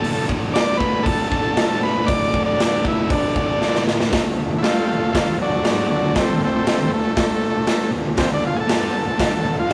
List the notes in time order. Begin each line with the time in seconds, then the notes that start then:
Already playing: D4 F#4 A4
0.00 D2 A2 D3, open hi-hat
0.26 D2 A2 D3, kick
0.52 D2 A2 D3 D5, snare, open hi-hat
0.77 D2 A2 D3 B4, kick
1.02 D2 A2 D3 A4, kick
1.06 open hi-hat
1.28 D2 A2 D3 A4, kick
1.54 D2 A2 D3, snare, open hi-hat
1.78 D2 A2 D3
1.83 B4
2.04 D2 A2 D3 D5, kick, open hi-hat
2.30 D2 A2 D3, kick
2.46 D4
2.58 D2 A2 D3, snare, open hi-hat
2.84 D2 A2 D3 E4, kick
3.08 D2 A2 D3 D4, kick, open hi-hat
3.34 D2 A2 D3, kick
3.61 D2 A2 D3, snare
3.75 snare
3.85 D2 A2 D3, snare
4.00 snare
4.09 D2 D4 F#4, kick, open hi-hat
4.13 D3 A4, snare
4.25 D2
4.35 D2
4.49 muted distorted electric guitar stroke
4.58 G2 E4
4.62 G3 A3 F4, snare, open hi-hat
4.86 A3 F4, muted distorted electric guitar stroke
4.99 D2
5.12 D2 D3 A3 F4, kick, snare, open hi-hat
5.25 muted distorted electric guitar stroke
5.37 muted distorted electric guitar stroke
5.41 F#3 D4
5.50 D2
5.63 G#2 F#3 G#3 D4, snare, open hi-hat
5.88 D2 F#3 D4
6.02 D2
6.14 G2 G3, kick, snare, open hi-hat
6.19 A3 C4
6.27 muted distorted electric guitar stroke
6.40 D2 A3
6.45 C4
6.66 D2 D3 A3 C4, snare, open hi-hat
6.78 muted distorted electric guitar stroke
6.89 D2
6.94 A3
7.17 kick, snare, open hi-hat
7.67 snare, open hi-hat
7.91 D2
8.04 D2
8.16 D2 D3 C4 D4 F#5, kick, snare, open hi-hat
8.20 A4
8.28 D2
8.34 D4
8.43 D2 F4
8.56 G#4, muted distorted electric guitar stroke
8.60 A4
8.67 G2 G3, snare, open hi-hat
8.92 muted distorted electric guitar stroke
9.05 D2
9.17 D2 D3, kick, snare, open hi-hat
9.32 muted distorted electric guitar stroke
9.45 muted distorted electric guitar stroke
9.55 D2
9.59 F4
9.68 G#2 G#3